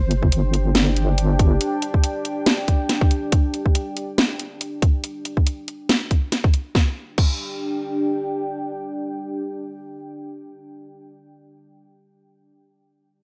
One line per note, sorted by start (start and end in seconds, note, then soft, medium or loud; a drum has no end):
0.00 0.74 G1 medium
0.00 5.00 D4 medium
0.00 5.00 G4 medium
0.00 5.00 G5 medium
0.11 closed hi-hat medium
0.23 kick medium
0.32 closed hi-hat medium
0.54 closed hi-hat medium
0.75 1.59 G1 loud
0.75 snare loud
0.75 closed hi-hat medium
0.97 closed hi-hat medium
1.18 closed hi-hat medium
1.39 kick loud
1.39 closed hi-hat medium
1.61 closed hi-hat medium
1.82 closed hi-hat medium
1.94 kick medium
2.04 closed hi-hat medium
2.25 closed hi-hat medium
2.46 snare loud
2.46 closed hi-hat medium
2.68 kick medium
2.68 closed hi-hat medium
2.89 snare medium
2.89 closed hi-hat medium
3.01 kick loud
3.11 closed hi-hat medium
3.32 kick loud
3.32 closed hi-hat medium
3.54 closed hi-hat medium
3.66 kick medium
3.75 closed hi-hat medium
3.97 closed hi-hat medium
4.18 snare loud
4.18 closed hi-hat medium
4.40 closed hi-hat medium
4.61 closed hi-hat medium
4.82 kick loud
4.82 closed hi-hat medium
5.04 closed hi-hat medium
5.25 closed hi-hat medium
5.37 kick medium
5.47 closed hi-hat medium
5.68 closed hi-hat soft
5.89 snare loud
5.89 closed hi-hat medium
6.11 kick medium
6.11 closed hi-hat soft
6.32 snare medium
6.32 closed hi-hat medium
6.44 kick loud
6.54 closed hi-hat medium
6.75 10.73 D4 medium
6.75 10.73 G4 medium
6.75 10.73 G5 medium
6.75 kick loud
6.75 snare medium
7.18 kick loud
7.18 crash medium